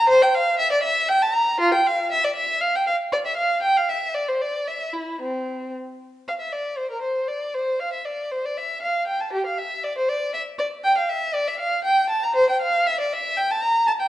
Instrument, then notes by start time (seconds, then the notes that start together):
violin
0.09 C5
0.22 G5
0.35 F5
0.59 E5
0.72 D5
0.83 E5
1.09 G5
1.22 A5
1.34 A#5
1.60 F4
1.74 G5
1.87 F5
2.12 E5
2.24 D5
2.36 E5
2.61 F5
2.75 G5
2.87 F5
3.12 D5
3.26 E5
3.37 F5
3.62 G5
3.77 F5
3.89 E5
4.14 D5
4.28 C5
4.41 D5
4.68 E5
4.93 E4
5.21 C4
6.28 F5
6.40 E5
6.52 D5
6.78 C5
6.91 A#4
7.02 C5
7.28 D5
7.55 C5
7.80 F5
7.93 E5
8.05 D5
8.32 C5
8.45 D5
8.57 E5
8.83 F5
9.08 G5
9.21 A5
9.33 G4
9.46 F5
9.58 E5
9.84 D5
9.98 C5
10.09 D5
10.34 E5
10.59 D5
10.84 G5
10.98 F5
11.09 E5
11.34 D5
11.47 E5
11.60 F5
11.85 G5
12.09 A5
12.24 A#5
12.36 C5
12.50 G5
12.62 F5
12.87 E5
13.00 D5
13.13 E5
13.37 G5
13.50 A5
13.62 A#5
13.87 A5
14.01 G5